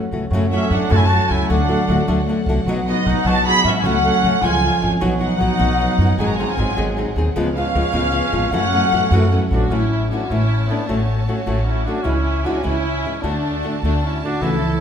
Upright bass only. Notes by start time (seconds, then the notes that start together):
0.11 C#2
0.30 F#2
0.70 F#2
0.91 F#2
1.30 C#2
1.50 D2
1.88 D2
2.08 D2
2.46 C2
2.65 B1
3.06 B1
3.24 B1
3.64 G#2
3.82 C#2
4.23 C#2
4.42 C#2
4.82 G#1
5.01 B1
5.40 B1
5.59 B1
5.98 F#2
6.18 G#1
6.57 G#1
6.78 G#1
7.16 D#2
7.36 C#2
7.75 C#2
7.94 C#2
8.33 G#1
8.51 F#2
8.92 F#2
9.11 F#2
9.51 A#1
9.70 A1
10.30 A1
10.89 A1
11.47 A1
12.05 C#2
12.65 C#2
13.23 D2
13.83 D2
14.41 C#2